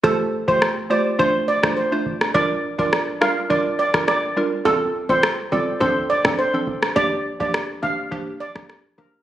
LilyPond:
<<
  \new Staff \with { instrumentName = "Steel pan" } { \time 4/4 \key g \dorian \tempo 4 = 104 a'16 r8 c''16 r8 d''16 r16 c''16 r16 d''16 r16 c''8. r16 | d''16 r8 d''16 r8 f''16 r16 d''16 r16 d''16 r16 d''8. r16 | a'16 r8 c''16 r8 d''16 r16 c''16 r16 d''16 r16 c''8. r16 | d''16 r8 d''16 r8 f''16 r8. d''16 r8. bes'16 r16 | }
  \new Staff \with { instrumentName = "Synth pluck" } { \time 4/4 \key g \dorian <a f' g' c''>16 r8 <a f' g' c''>8. <a f' g' c''>8 <a d' f' c''>16 r8 <a d' f' c''>16 r16 <a d' f' c''>16 r8 | <g d' f' bes'>16 r8 <g d' f' bes'>8. <g d' f' bes'>8 <g d' f' bes'>16 r8 <g d' f' bes'>16 r8 <g d' f' bes'>16 r16 | <g c' f' a'>16 r8 <g c' f' a'>8. <g c' f' a'>8 <f c' d' a'>16 r8 <f c' d' a'>16 r16 <f c' d' a'>16 r8 | <f bes d' g'>16 r8 <f bes d' g'>8. <f bes d' g'>8 <f bes d' g'>16 r8 <f bes d' g'>16 r8 <f bes d' g'>16 r16 | }
  \new Staff \with { instrumentName = "808-style bass" } { \clef bass \time 4/4 \key g \dorian r1 | r1 | f,,8. f,,8. g,,8 d,8. d,16 r8 f,,8 | g,,8. g,,8. a,,8 g,,8. g,,16 r8 f,,8 | }
  \new DrumStaff \with { instrumentName = "Drums" } \drummode { \time 4/4 bd8. bd16 ss4 bd8. <bd ss>16 r8 bd16 ss16 | bd8. bd16 ss8 ss8 bd8. <bd ss>16 ss4 | bd8. bd16 ss4 bd8. <bd ss>16 r8 bd16 ss16 | bd8. bd16 ss4 bd8. <bd ss>16 ss4 | }
>>